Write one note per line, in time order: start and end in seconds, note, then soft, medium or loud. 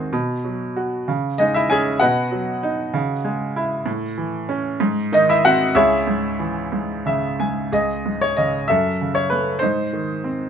0.00 0.14 G#2 medium
0.00 0.14 D#3 soft
0.00 0.14 C4 soft
0.00 0.13 D#4 medium
0.00 0.13 F#4 medium
0.00 0.14 G#4 medium
0.00 0.14 C5 medium
0.00 0.14 D#5 medium
0.00 0.14 F#5 medium
0.00 0.14 G#5 medium
0.13 1.05 B2 medium
0.44 1.06 F#3 soft
0.76 1.07 F#4 soft
1.08 1.99 C#3 medium
1.38 2.00 G#3 soft
1.38 1.54 D#4 medium
1.38 1.55 D#5 medium
1.54 1.70 E4 medium
1.54 1.69 E5 medium
1.70 2.00 C#4 medium
1.70 2.00 G#4 medium
1.70 2.02 G#5 medium
2.00 2.92 B2 medium
2.00 3.22 F#4 medium
2.00 3.22 B4 medium
2.00 3.22 D#5 medium
2.00 3.21 F#5 medium
2.31 2.92 F#3 soft
2.63 2.94 D#4 medium
2.94 3.84 C#3 medium
3.24 3.85 G#3 medium
3.56 3.87 E4 medium
3.86 4.77 A2 medium
4.18 4.79 E3 medium
4.49 4.80 C#4 medium
4.80 5.72 G#2 medium
5.12 5.74 D#3 medium
5.12 5.27 D#4 medium
5.12 5.28 D#5 medium
5.29 5.43 E4 medium
5.29 5.45 E5 medium
5.44 5.75 C4 medium
5.44 5.74 F#4 medium
5.44 5.74 F#5 loud
5.75 7.67 C#2 medium
5.75 7.02 E4 medium
5.75 7.02 G#4 medium
5.75 7.02 C#5 medium
5.75 7.01 E5 medium
6.07 6.71 G#2 soft
6.39 7.67 E3 medium
6.72 7.38 G#2 soft
7.06 7.70 C#3 soft
7.06 7.37 E5 medium
7.40 7.71 G#2 soft
7.40 7.70 G#5 medium
7.72 8.66 C#2 soft
7.72 8.65 G#4 medium
7.72 8.23 D#5 medium
8.06 8.67 G#2 soft
8.21 8.37 C#5 medium
8.37 8.68 C#3 soft
8.37 8.69 D#5 medium
8.68 9.60 F#2 medium
8.68 9.58 A4 medium
8.68 9.16 E5 medium
9.01 9.60 C#3 soft
9.15 9.29 C#5 medium
9.30 9.61 A3 soft
9.30 9.62 B4 medium
9.59 10.49 G#2 medium
9.59 10.49 D#4 soft
9.59 10.48 C5 medium
9.93 10.49 D#3 soft
10.24 10.49 C4 soft